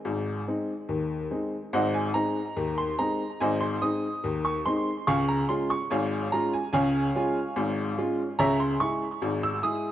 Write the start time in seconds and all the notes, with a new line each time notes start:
Already playing: G#4 D#5 G#5
0.05 G#1 G#2
0.48 G#3 C4 D#4
0.89 D#2 D#3
1.31 G#3 C4 D#4
1.73 G#1 G#2 C5 D#5 F#5
1.94 G#5
2.14 G#3 C4 D#4 A#5
2.56 D#2 D#3
2.78 C6
2.99 G#3 C4 D#4 A#5
3.40 G#1 G#2 C5 D#5 G#5
3.61 C6
3.82 G#3 C4 D#4 D#6
4.24 D#2 D#3
4.45 C#6
4.66 G#3 C4 D#4 C6
5.07 C#2 C#3 F5 G#5 C#6
5.28 A#5
5.49 G#3 C#4 F4 C6
5.70 C#6
5.91 G#1 G#2 C#5 F5 G#5
6.32 G#3 C#4 F4 A#5
6.53 G#5
6.73 C#2 C#3 C#5 F5 G#5
7.15 G#3 C#4 F4
7.56 G#1 G#2
7.98 G#3 C#4 F4
8.39 C#2 C#3 C#5 E5 A#5
8.60 C6
8.80 G#3 E4 G#4 C#6
9.22 G#1 G#2
9.43 E6
9.63 G#3 E4 G#4 D#6